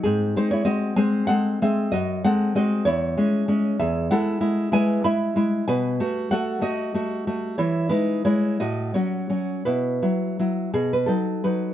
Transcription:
\new Staff \with { instrumentName = "Nylon-string guitar" } { \time 6/8 \key cis \minor \tempo 4. = 63 << { <bis gis'>8 <dis' bis'>16 <e' cis''>16 <fis' dis''>8 <bis' gis''>8 <a' fis''>8 <gis' e''>8 | <fis' dis''>8 <a' fis''>8 <fis' dis''>8 <e' cis''>4. | \key e \major <gis' e''>8 <a' fis''>4 <b' gis''>8 <e'' b''>4 | <b' gis''>4 <a' fis''>8 <fis' dis''>4. |
<e' cis''>8 <dis' b'>8 <e' cis''>8 <fis' dis''>8 <fis' cis''>4 | <e' b'>4. gis'16 b'16 a'8 b'8 | } \\ { gis,8 <gis bis>8 <gis bis>8 <gis bis>8 <gis bis>8 <gis bis>8 | fis,8 <gis bis>8 <gis bis>8 e,8 <gis cis'>8 <gis cis'>8 | e,8 <gis e'>8 <gis e'>8 <gis e'>8 <gis e'>8 <gis e'>8 | b,8 <a fis'>8 <a fis'>8 a8 <a fis'>8 <a fis'>8 |
e8 <gis e'>8 gis8 a,8 <fis cis'>8 <fis cis'>8 | b,8 <fis e'>8 <fis e'>8 b,8 <fis dis'>8 <fis dis'>8 | } >> }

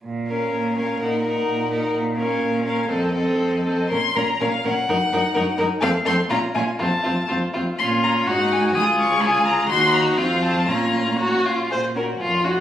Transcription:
<<
  \new Staff \with { instrumentName = "Violin" } { \time 2/4 \key bes \minor \tempo 4 = 124 r8 f''4 f''8 | ges''8 ges''4 ges''8 | r8 f''4 f''8 | ees''8 ees''4 ees''8 |
c'''8 bes''8 f''8 ges''8~ | ges''4. r8 | f''8 c'''8 bes''8 aes''8 | a''4 r4 |
c'''8 bes''8 ges''8 aes''8 | ees'''8 des'''8 aes''8 bes''8 | c'''8 bes''8 f''8 a''8 | bes''4 r4 |
aes'8 ges'8 des'8 ees'8 | }
  \new Staff \with { instrumentName = "Violin" } { \time 2/4 \key bes \minor r8 bes'4 bes'8 | bes'8 bes'4 bes'8 | r8 bes'4 bes'8 | a'8 a'4 a'8 |
bes'8 bes'8 bes'8 bes'8 | bes'8 bes'8 bes'8 bes'8 | a'8 a'8 f'8 f'8 | f'8 f'8 f'8 f'8 |
f'4 ges'4 | aes'4 aes'4 | ges'4 f'4 | f'4 ges'8 f'8 |
c''8 bes'8 f'8 ges'8 | }
  \new Staff \with { instrumentName = "Viola" } { \time 2/4 \key bes \minor r8 des'4 des'8 | ees'8 ees'4 ees'8 | r8 des'4 des'8 | c'8 c'4 c'8 |
des'8 des'8 des'8 des'8 | ees'8 ees'8 ees'8 ees'8 | c'8 c'8 des'8 des'8 | c'8 c'8 c'8 c'8 |
des'4 ees'4 | f'4 f'4 | ees'4 c'4 | des'4. r8 |
r8 des'8 r8 des'8 | }
  \new Staff \with { instrumentName = "Cello" } { \clef bass \time 2/4 \key bes \minor bes,4 bes,4 | bes,4 bes,4 | bes,4 bes,4 | f,4 f,4 |
bes,8 bes,8 bes,8 bes,8 | ges,8 ges,8 ges,8 ges,8 | f,8 f,8 bes,8 bes,8 | f,8 f,8 f,8 f,8 |
bes,4 aes,4 | des,2 | ees,4 f,4 | bes,4. r8 |
bes,4 f,4 | }
>>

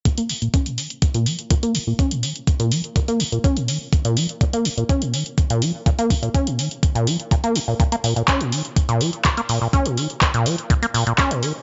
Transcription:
<<
  \new Staff \with { instrumentName = "Acid bass" } { \clef bass \time 4/4 \key bes \minor \tempo 4 = 124 bes,16 bes16 bes,16 bes,16 des'16 bes,16 ees16 r8 bes,16 f16 r16 bes,16 bes16 bes,16 bes,16 | des'16 bes,16 ees16 r8 bes,16 f16 r16 bes,16 bes16 bes,16 bes,16 des'16 bes,16 ees16 r16 | r16 bes,16 f16 r16 bes,16 bes16 bes,16 bes,16 des'16 bes,16 ees16 r8 bes,16 f16 r16 | bes,16 bes16 bes,16 bes,16 des'16 bes,16 ees16 r8 bes,16 f16 r16 bes,16 bes16 bes,16 bes,16 |
bes,16 bes16 bes,16 bes,16 des'16 bes,16 ees16 r8 bes,16 f16 r16 bes,16 bes16 bes,16 bes,16 | des'16 bes,16 ees16 r8 bes,16 f16 r16 bes,16 bes16 bes,16 bes,16 des'16 bes,16 ees16 r16 | }
  \new DrumStaff \with { instrumentName = "Drums" } \drummode { \time 4/4 <hh bd>16 hh16 hho16 hh16 <hh bd>16 hh16 hho16 hh16 <hh bd>16 hh16 hho16 hh16 <hh bd>16 hh16 hho8 | <hh bd>16 hh16 hho16 hh16 <hh bd>16 hh16 hho16 hh16 <hh bd>16 hh16 hho16 hh16 <hh bd>16 hh16 hho8 | <hh bd>16 hh16 hho16 hh16 <hh bd>16 hh16 hho16 hh16 <hh bd>16 hh16 hho16 hh16 <hh bd>16 hh16 hho8 | <hh bd>16 hh16 <hho bd>16 hh16 <hh bd>16 hh16 hho16 hh16 <hh bd>16 hh16 hho16 hh16 <hh bd>16 hh16 hho8 |
<hh bd>16 hh16 hho16 hh16 <hc hh bd>16 hh16 hho16 hh16 <hh bd>16 hh16 hho16 hh16 <hc hh bd>16 hh16 hho8 | <hh bd>16 hh16 hho16 hh16 <hc hh bd>16 hh16 hho16 hh16 <hh bd>16 hh16 hho16 hh16 <hc hh bd>16 hh16 hho8 | }
>>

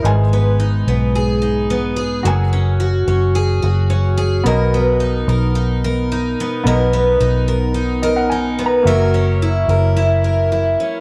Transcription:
<<
  \new Staff \with { instrumentName = "Upright piano" } { \time 4/4 \key b \major \tempo 4 = 109 << { r1 | r1 | r1 | r2 r8 dis''16 fis''16 \tuplet 3/2 { gis''4 ais''8 } |
r1 | } \\ { <dis' b' gis''>1 | <fis' ais' gis''>1 | <b ais' dis''>1 | <b ais' dis''>1 |
<ais fis' e''>1 | } >> }
  \new Staff \with { instrumentName = "Twelve-string acoustic guitar" } { \time 4/4 \key b \major gis,8 b8 dis'8 b8 gis'8 dis'8 b8 gis'8 | fis8 cis'8 fis'8 cis'8 gis'8 fis'8 cis'8 gis'8 | <b, ais'>8 b8 dis'8 ais'8 dis'8 ais'8 dis'8 b8 | <b, ais'>8 b8 dis'8 ais'8 dis'8 ais'8 dis'8 b8 |
<fis ais'>8 cis'8 e'8 ais'8 e'8 ais'8 e'8 cis'8 | }
  \new Staff \with { instrumentName = "Fingered electric bass" } { \clef bass \time 4/4 \key b \major gis,,4. b,,2~ b,,8 | fis,,4. fis,,4 fis,,4. | b,,4. b,,2 r8 | b,,4 b,,2. |
fis,,4. fis,,2 r8 | }
>>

